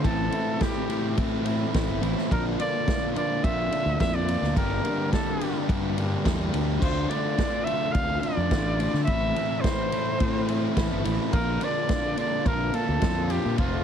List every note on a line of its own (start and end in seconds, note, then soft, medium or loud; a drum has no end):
0.02 0.28 A1 loud
0.02 0.30 A2 medium
0.02 0.31 E3 medium
0.02 0.32 A3 loud
0.02 0.31 C4 loud
0.02 0.32 E4 loud
0.02 0.64 A4 loud
0.02 kick loud
0.02 ride loud
0.31 0.58 A2 medium
0.31 0.59 E3 medium
0.31 0.60 A3 medium
0.31 0.60 C4 loud
0.31 0.60 E4 loud
0.31 ride medium
0.59 0.87 A2 loud
0.59 0.87 E3 loud
0.59 0.89 A3 loud
0.59 0.89 C4 loud
0.59 0.89 E4 loud
0.59 1.18 G4 medium
0.59 kick loud
0.59 snare loud
0.59 ride medium
0.88 1.15 A2 medium
0.88 1.15 E3 medium
0.88 1.16 A3 medium
0.88 1.17 C4 loud
0.88 1.17 E4 medium
0.88 ride medium
1.16 1.43 A2 loud
1.16 1.64 A2 medium
1.16 1.44 E3 loud
1.16 1.45 A3 loud
1.16 1.45 C4 loud
1.16 1.45 E4 loud
1.16 kick loud
1.16 ride loud
1.45 1.73 A2 medium
1.45 1.73 E3 loud
1.45 1.73 A3 medium
1.45 1.74 C4 medium
1.45 1.74 E4 medium
1.45 ride medium
1.74 1.86 A1 loud
1.74 2.00 A2 medium
1.74 2.01 E3 loud
1.74 2.01 A3 loud
1.74 2.02 C4 loud
1.74 2.02 E4 loud
1.74 kick loud
1.74 snare loud
1.74 ride loud
1.88 2.00 G1 medium
2.01 2.14 A1 loud
2.01 2.29 A2 medium
2.01 2.29 E3 medium
2.01 2.29 A3 medium
2.01 2.29 C4 medium
2.01 2.30 E4 loud
2.01 ride medium
2.18 snare soft
2.30 2.55 A#1 loud
2.30 2.57 A#2 loud
2.30 2.58 D3 medium
2.30 2.60 A#3 medium
2.30 2.60 D4 loud
2.30 2.61 F4 loud
2.30 2.45 A#4 medium
2.30 kick loud
2.30 ride loud
2.59 2.85 A#2 medium
2.59 2.86 D3 loud
2.59 2.87 A#3 medium
2.59 2.88 D4 loud
2.59 2.88 F4 loud
2.59 3.12 D5 loud
2.59 ride medium
2.87 3.14 A#2 loud
2.87 3.14 D3 medium
2.87 3.16 A#3 loud
2.87 3.16 D4 loud
2.87 3.17 F4 loud
2.87 kick loud
2.87 snare loud
2.87 ride medium
3.15 3.42 A#2 medium
3.15 3.43 D3 medium
3.15 3.44 A#3 loud
3.15 3.45 D4 medium
3.15 3.45 F4 medium
3.15 3.45 D5 loud
3.15 ride medium
3.44 3.67 A#1 medium
3.44 3.70 A#2 loud
3.44 3.71 D3 loud
3.44 3.71 A#3 loud
3.44 3.72 D4 loud
3.44 3.73 F4 loud
3.44 4.00 E5 loud
3.44 kick loud
3.44 ride loud
3.71 3.98 A#2 medium
3.71 3.99 D3 medium
3.71 4.00 A#3 medium
3.71 4.01 D4 medium
3.71 4.01 F4 medium
3.71 ride medium
3.86 3.97 D2 medium
4.00 4.35 F2 loud
4.00 4.27 A#2 loud
4.00 4.28 D3 loud
4.00 4.28 A#3 loud
4.00 4.30 D4 loud
4.00 4.30 F4 loud
4.00 4.16 E5 loud
4.00 kick loud
4.00 snare loud
4.00 ride loud
4.15 4.55 D5 loud
4.28 4.55 A#2 medium
4.28 4.55 D3 medium
4.28 4.55 A#3 loud
4.28 4.58 D4 medium
4.28 4.58 F4 loud
4.28 ride medium
4.42 4.54 D2 medium
4.42 snare soft
4.56 4.80 G1 loud
4.56 4.83 G2 medium
4.56 4.83 D3 loud
4.56 4.84 G3 loud
4.56 4.84 A#3 loud
4.56 4.85 D4 loud
4.56 4.85 G4 loud
4.56 5.09 A#4 loud
4.56 kick loud
4.56 ride loud
4.84 5.11 G2 medium
4.84 5.12 D3 loud
4.84 5.12 G3 loud
4.84 5.13 A#3 loud
4.84 5.14 D4 loud
4.84 5.14 G4 loud
4.84 ride medium
5.12 5.39 G2 loud
5.12 5.40 D3 medium
5.12 5.40 G3 loud
5.12 5.41 A#3 loud
5.12 5.42 D4 loud
5.12 5.41 G4 loud
5.12 5.65 A4 medium
5.12 kick loud
5.12 snare loud
5.12 ride medium
5.40 5.67 G2 medium
5.40 5.67 D3 medium
5.40 5.68 G3 medium
5.40 5.68 A#3 medium
5.40 5.68 D4 medium
5.40 5.69 G4 medium
5.40 ride medium
5.68 5.96 G2 loud
5.68 6.16 G2 loud
5.68 5.97 D3 loud
5.68 5.97 G3 loud
5.68 5.98 A#3 loud
5.68 5.98 D4 loud
5.68 5.99 G4 loud
5.68 kick loud
5.68 ride loud
5.97 6.23 G2 loud
5.97 6.24 D3 medium
5.97 6.24 G3 medium
5.97 6.25 A#3 medium
5.97 6.25 D4 medium
5.97 6.26 G4 loud
5.97 ride medium
6.24 6.51 E2 medium
6.24 6.51 G2 loud
6.24 6.52 D3 loud
6.24 6.53 G3 medium
6.24 6.53 A#3 medium
6.24 6.53 D4 loud
6.24 6.54 G4 loud
6.24 kick loud
6.24 snare loud
6.24 ride loud
6.53 6.79 D2 medium
6.53 6.80 G2 medium
6.53 6.80 D3 medium
6.53 6.80 G3 medium
6.53 6.81 A#3 medium
6.53 6.81 D4 medium
6.53 6.81 G4 medium
6.53 ride medium
6.82 7.05 D2 loud
6.82 7.08 D3 medium
6.82 7.10 A3 medium
6.82 7.10 D4 loud
6.82 7.10 F4 medium
6.82 7.11 C5 medium
6.82 kick loud
6.82 crash medium
7.10 7.37 D3 medium
7.10 7.38 A3 medium
7.10 7.38 D4 loud
7.10 7.38 F4 loud
7.10 7.66 D5 loud
7.10 ride medium
7.38 7.65 D3 loud
7.38 7.66 A3 loud
7.38 7.66 D4 loud
7.38 7.67 F4 loud
7.38 kick loud
7.38 snare loud
7.38 ride loud
7.64 7.93 D3 medium
7.64 7.94 A3 medium
7.64 7.94 D4 medium
7.64 7.95 F4 medium
7.64 7.93 E5 loud
7.64 ride medium
7.91 8.18 D2 medium
7.91 8.21 D3 loud
7.91 8.22 A3 loud
7.91 8.22 D4 loud
7.91 8.21 F5 loud
7.91 kick loud
7.91 ride loud
7.96 8.22 F4 loud
8.20 8.49 D3 medium
8.20 8.51 A3 medium
8.20 8.50 D4 medium
8.20 8.51 F4 medium
8.20 9.03 D5 medium
8.20 ride medium
8.37 8.49 F2 medium
8.51 8.86 A1 loud
8.51 8.78 D3 loud
8.51 8.79 A3 loud
8.51 8.79 D4 loud
8.51 8.80 F4 loud
8.51 kick loud
8.51 snare loud
8.51 ride loud
8.79 9.06 D3 medium
8.79 9.08 A3 medium
8.79 9.06 D4 medium
8.79 9.07 F4 loud
8.79 ride medium
8.94 9.05 D3 medium
8.94 snare soft
9.04 9.33 A2 medium
9.04 9.34 E3 medium
9.04 9.62 E5 loud
9.04 ride medium
9.08 9.31 A1 loud
9.08 9.36 A3 medium
9.08 9.35 C4 medium
9.08 9.36 E4 loud
9.08 kick loud
9.35 9.62 A2 medium
9.35 9.63 E3 loud
9.35 9.64 A3 medium
9.35 9.64 C4 loud
9.35 9.64 E4 loud
9.35 ride medium
9.61 9.90 A2 loud
9.61 9.90 E3 loud
9.61 10.75 C5 loud
9.61 kick loud
9.61 ride loud
9.65 9.92 A3 loud
9.65 9.92 C4 loud
9.65 9.92 E4 loud
9.65 snare loud
9.91 10.18 A2 medium
9.91 10.18 E3 medium
9.91 10.20 A3 medium
9.91 10.19 C4 medium
9.91 10.20 E4 loud
9.91 ride medium
10.19 10.46 A2 loud
10.19 10.67 A2 medium
10.19 10.47 E3 loud
10.19 10.48 A3 loud
10.19 10.48 C4 loud
10.19 10.49 E4 loud
10.19 kick loud
10.19 ride loud
10.48 10.74 A2 loud
10.48 10.75 E3 medium
10.48 10.76 A3 medium
10.48 10.76 C4 medium
10.48 10.76 E4 loud
10.48 ride medium
10.75 10.89 A1 loud
10.75 11.02 A2 loud
10.75 11.03 E3 loud
10.75 11.04 A3 loud
10.75 11.04 C4 loud
10.75 11.04 E4 loud
10.75 kick loud
10.75 snare loud
10.75 ride loud
10.91 11.03 G1 medium
11.03 11.17 A1 loud
11.03 11.31 A2 medium
11.03 11.31 E3 medium
11.03 11.33 A3 loud
11.03 11.32 C4 medium
11.03 11.32 E4 loud
11.03 ride medium
11.32 11.56 A#1 loud
11.32 11.59 A#2 medium
11.32 11.60 D3 loud
11.32 11.60 A#3 loud
11.32 11.60 D4 loud
11.32 11.62 F4 loud
11.32 11.65 A#4 loud
11.32 kick loud
11.32 ride loud
11.60 11.88 A#2 medium
11.60 11.88 D3 medium
11.60 11.89 A#3 loud
11.60 11.89 D4 loud
11.60 11.90 F4 medium
11.60 12.19 D5 loud
11.60 ride medium
11.89 12.15 A#2 loud
11.89 12.16 D3 loud
11.89 12.16 A#3 loud
11.89 12.16 D4 loud
11.89 12.18 F4 loud
11.89 kick loud
11.89 snare loud
11.89 ride loud
12.16 12.44 A#2 medium
12.16 12.45 D3 loud
12.16 12.45 A#3 loud
12.16 12.45 D4 loud
12.16 12.46 F4 medium
12.16 12.48 D5 loud
12.16 ride medium
12.45 12.69 A#1 loud
12.45 12.71 A#2 medium
12.45 12.72 D3 medium
12.45 12.72 A#3 medium
12.45 12.73 D4 loud
12.45 12.74 F4 loud
12.45 12.76 A#4 loud
12.45 kick loud
12.45 ride loud
12.72 13.00 A#2 medium
12.72 13.00 D3 medium
12.72 13.01 A#3 medium
12.72 13.01 D4 loud
12.72 13.02 F4 loud
12.72 13.32 A4 loud
12.72 ride medium
12.88 13.00 D2 medium
13.01 13.37 F2 loud
13.01 13.28 A#2 medium
13.01 13.29 D3 loud
13.01 13.29 A#3 loud
13.01 13.30 D4 loud
13.01 13.31 F4 loud
13.01 kick loud
13.01 snare loud
13.01 ride loud
13.29 13.56 A#2 medium
13.29 13.57 D3 medium
13.29 13.57 A#3 medium
13.29 13.57 D4 medium
13.29 13.59 F4 loud
13.29 13.58 G4 loud
13.29 ride medium
13.45 13.57 A#2 loud
13.57 13.82 F1 loud
13.57 13.84 F2 medium
13.57 13.84 C3 medium
13.57 13.84 F3 loud
13.57 13.84 A3 loud
13.57 13.84 C4 loud
13.57 13.84 F4 loud
13.57 kick loud
13.57 ride loud